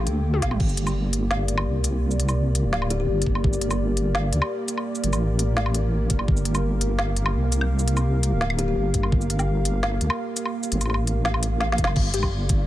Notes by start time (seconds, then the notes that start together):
Already playing: A#3 G4 A4 G5
0.07 D2, closed hi-hat
0.34 high tom
0.42 A#1, kick, snare, closed hi-hat
0.51 mid tom, low woodblock
0.60 G1 A#4 D5, kick, crash
0.69 shaker
0.77 closed hi-hat
0.87 low woodblock, shaker
1.13 closed hi-hat
1.31 snare
1.48 closed hi-hat
1.58 low woodblock
1.67 C2
1.84 closed hi-hat, shaker
2.11 shaker
2.20 closed hi-hat
2.29 low woodblock, shaker
2.55 closed hi-hat
2.65 D1
2.73 snare
2.82 low woodblock
2.90 G4, closed hi-hat
3.00 G4
3.09 G1
3.22 closed hi-hat
3.26 G1, kick
3.35 low woodblock
3.44 kick
3.53 shaker
3.61 closed hi-hat
3.71 low woodblock, shaker
3.97 closed hi-hat
4.15 snare
4.33 D2, closed hi-hat
4.42 low woodblock
4.68 closed hi-hat, shaker
4.78 low woodblock
4.95 shaker
5.04 G1, closed hi-hat
5.13 A1, low woodblock, shaker
5.39 closed hi-hat
5.57 snare
5.66 low woodblock
5.74 closed hi-hat
6.10 F1, kick, closed hi-hat
6.19 G1, low woodblock
6.28 G1 F5, kick
6.37 shaker
6.45 closed hi-hat
6.55 low woodblock, shaker
6.81 closed hi-hat
6.99 snare
7.17 closed hi-hat
7.26 low woodblock
7.35 C2
7.52 closed hi-hat, shaker
7.61 low woodblock
7.79 shaker
7.88 closed hi-hat
7.97 low woodblock, shaker
8.23 closed hi-hat
8.32 D1
8.41 snare
8.50 low woodblock
8.59 G4, closed hi-hat
8.68 G4
8.77 G1
8.94 G1, kick, closed hi-hat
9.03 low woodblock
9.12 kick
9.21 shaker
9.30 closed hi-hat
9.39 low woodblock, shaker
9.65 closed hi-hat
9.83 snare
10.01 D2, closed hi-hat
10.10 low woodblock
10.37 closed hi-hat, shaker
10.46 low woodblock
10.63 shaker
10.72 G1, closed hi-hat
10.81 A1, closed hi-hat, low woodblock, shaker
10.86 low woodblock
10.90 low woodblock
10.94 low woodblock
11.07 closed hi-hat
11.25 snare
11.34 low woodblock
11.43 closed hi-hat
11.60 snare
11.72 snare
11.78 F1, kick, closed hi-hat
11.84 G1, snare, low woodblock
11.96 G1 A#3 G4 A4 D5, kick, crash
12.14 G4, closed hi-hat
12.23 kick, low woodblock
12.49 kick, closed hi-hat